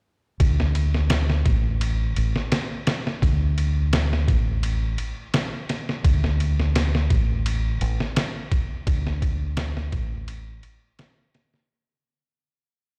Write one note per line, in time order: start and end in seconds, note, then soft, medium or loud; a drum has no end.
0.40 1.42 D2 medium
0.40 kick loud
0.40 ride medium
0.60 snare soft
0.75 ride medium
0.94 snare soft
1.10 snare loud
1.10 ride medium
1.30 snare medium
1.46 2.13 A1 medium
1.46 kick medium
1.46 ride medium
1.81 ride medium
2.16 2.33 A1 medium
2.16 ride medium
2.36 snare soft
2.52 snare loud
2.52 ride medium
2.87 snare medium
2.87 ride medium
3.07 snare soft
3.22 4.25 D2 medium
3.22 kick medium
3.22 ride medium
3.58 ride medium
3.93 snare loud
3.93 ride medium
4.13 snare soft
4.28 4.96 A1 medium
4.28 kick medium
4.28 ride medium
4.63 ride medium
4.98 ride medium
5.34 snare loud
5.34 ride medium
5.69 snare soft
5.69 ride medium
5.89 snare soft
6.04 7.07 D2 loud
6.04 kick loud
6.04 ride medium
6.24 snare soft
6.40 ride medium
6.60 snare soft
6.75 snare loud
6.75 ride medium
6.95 snare medium
7.10 7.78 A1 medium
7.10 kick medium
7.10 ride medium
7.46 ride medium
7.81 7.98 A1 medium
7.81 ride medium
8.00 snare soft
8.16 snare loud
8.16 ride medium
8.52 kick medium
8.52 ride medium
8.87 9.90 D2 loud
8.87 kick loud
8.87 ride medium
9.07 snare soft
9.22 kick medium
9.22 ride medium
9.57 snare loud
9.57 ride medium
9.77 snare soft
9.92 10.60 A1 medium
9.92 kick medium
9.92 ride medium
10.28 ride medium
10.63 ride medium
10.99 snare loud
10.99 ride medium
11.34 snare medium
11.34 ride medium
11.54 snare soft